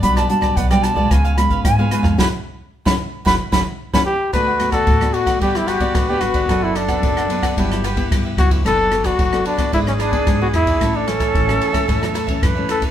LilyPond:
<<
  \new Staff \with { instrumentName = "Flute" } { \time 4/4 \key fis \phrygian \tempo 4 = 111 b''16 a''16 a''8 fis''16 g''16 a''8 gis''8 b''8 gis''4 | b''16 r4 b''16 r8 b''16 r16 b''16 r8 b''16 r8 | \key d \major fis'2 g'4 b'4 | a'2 g'4. r8 |
fis'2 gis'2 | a'2. b'4 | }
  \new Staff \with { instrumentName = "Cavaquinho" } { \time 4/4 \key fis \phrygian <fis' g' b' d''>16 <g' b' d''>16 r16 <g' b' d''>16 <fis' g' b' d''>16 <g' b' d''>8 <g' b' d''>16 <eis' b' cis'' eis''>16 <b' cis'' eis''>16 r16 <b' cis'' eis''>8 <b' cis'' eis''>16 <eis' b' cis'' eis''>16 <b' cis'' eis''>16 | <fis' b' cis''>16 r4 <fis' b' cis''>16 r8 <fis' b' cis''>16 r16 <fis' b' cis''>16 r8 <fis' b' cis''>16 r8 | \key d \major <d' b' d'' fis''>16 <b' d'' fis''>16 r16 <b' d'' fis''>8 <b' d'' fis''>16 <d' b' d'' fis''>16 <b' d'' fis''>16 <fis' g' b' d''>16 <g' b' d''>16 <fis' g' b' d''>16 <g' b' d''>8 <g' b' d''>16 r16 <g' b' d''>16 | <d' b' d'' fis''>16 <b' d'' fis''>16 r16 <b' d'' fis''>8 <b' d'' fis''>16 <d' b' d'' fis''>16 <b' d'' fis''>16 <fis' g' b' e''>16 <g' b' e''>16 <fis' g' b' e''>16 <g' b' e''>8 <g' b' e''>16 r16 <g' b' e''>16 |
<d' a' b' d''>16 <a' b' d''>16 r16 <a' b' d''>8 <a' b' d''>16 <d' a' b' d''>16 <a' b' d''>16 <e' gis' b' d''>16 <gis' b' d''>16 <e' gis' b' d''>16 <gis' b' d''>8 <gis' b' d''>16 r16 <gis' b' d''>16 | <e' a' cis'' e''>16 <a' cis'' e''>16 r16 <a' cis'' e''>8 <a' cis'' e''>16 <e' a' cis'' e''>16 <a' cis'' e''>16 <e' a' cis'' e''>16 <a' cis'' e''>16 <e' a' cis'' e''>16 <a' cis'' e''>8 <a' cis'' e''>16 r16 <a' cis'' e''>16 | }
  \new Staff \with { instrumentName = "Trumpet" } { \time 4/4 \key fis \phrygian r1 | r2. r8 g'8 | \key d \major b'8. a'8. fis'8 g'16 e'16 fis'8. g'16 fis'8~ | fis'16 e'16 d'2 r4 fis'8 |
a'8. fis'8. d'8 e'16 cis'16 d'8. fis'16 e'8~ | e'16 d'16 cis'2 r4 a'8 | }
  \new Staff \with { instrumentName = "Nylon-string guitar" } { \time 4/4 \key fis \phrygian << { <g d' fis'>8 <g d' fis'>8 r16 <g d' fis'>8 <gis b eis'>8. <gis b eis'>8. <gis b eis'>8. | <cis' e' fis'>16 r4 <cis' e' fis'>16 r8 <cis' e' fis'>16 r16 <cis' e' fis'>16 r8 <cis' e' fis'>16 r8 | \key d \major <a b fis'>16 r16 <a b fis'>8. <a b fis'>8. <b d'>8. <b d' fis'>8 <b d' fis'>8. | <fis b d'>8 r16 <fis b d'>8. <fis b d'>8 <fis b e'>8 r16 <b e'>8. <fis b e'>8 |
<b d' a'>8 <b d' a'>8 r16 <b d' a'>8 <e b d'>4 <e b d'>8 <e b d'>8. | <e a cis'>8 <e a cis'>8 r16 <e a cis'>8 <e a cis'>16 <e a cis'>8 r16 <e a cis'>8 <e a cis'>8. | } \\ { b,4 b,4 cis4 gis,4 | r1 | d4 a,4 g4 d4 | fis,4 fis,4 g,4 g,4 |
fis4 fis4 gis,4 gis,4 | a,4 e4 a,4 e4 | } >> }
  \new Staff \with { instrumentName = "Upright bass" } { \clef bass \time 4/4 \key fis \phrygian b,,8 r16 b,,16 b,,8. b,,16 cis,8. gis,,16 gis,,8 r16 eis,16 | fis,,16 r4 fis,,16 r8 fis,,16 r16 fis,,16 r8 fis,,16 r8 | \key d \major d,4 d,8 r8 g,,4 d,8 g,,8 | fis,,4 fis,,8 r8 g,,4 b,,8 cis,8 |
fis,,4 fis,,8 r8 gis,,4 b,,8 e,8 | a,,4 a,,8 r8 e,4 fis,8 e,8 | }
  \new DrumStaff \with { instrumentName = "Drums" } \drummode { \time 4/4 <hh bd>16 <hh ss>16 hh16 <bd ss>16 <hh bd>16 <hh ss>16 <hh ss>16 bd16 <hh bd ss>16 hh16 <hh ss>16 <hh bd>16 <hh bd ss>8 <hh ss>16 <bd ss>16 | <bd sn>4 r16 <bd sn>8. <bd sn>8 <bd sn>8 r16 <bd sn>8. | <bd cymr ss>8 <cymr ss>16 <bd cymr ss>16 <bd cymr>16 ss16 cymr16 <bd cymr ss>16 <bd cymr>16 ss16 <cymr ss>16 <bd cymr>16 <bd cymr ss>8 <cymr ss>16 <bd cymr>16 | <bd cymr ss>8 <cymr ss>16 <bd cymr ss>16 <bd cymr>16 ss16 cymr16 <bd cymr ss>16 <bd cymr>16 ss16 <cymr ss>16 <bd cymr>16 <bd cymr ss>8 <cymr ss>16 <bd cymr>16 |
<bd cymr ss>8 <cymr ss>16 <bd cymr ss>16 <bd cymr>16 ss16 cymr16 <bd cymr ss>16 <bd cymr>16 ss16 <cymr ss>16 <bd cymr>16 <bd cymr ss>8 <cymr ss>16 <bd cymr>16 | <bd cymr ss>8 <cymr ss>16 <bd cymr ss>16 <bd cymr>16 ss16 cymr16 <bd cymr ss>16 <bd cymr>16 ss16 <cymr ss>16 <bd cymr>16 <bd cymr ss>8 <cymr ss>16 <bd cymr>16 | }
>>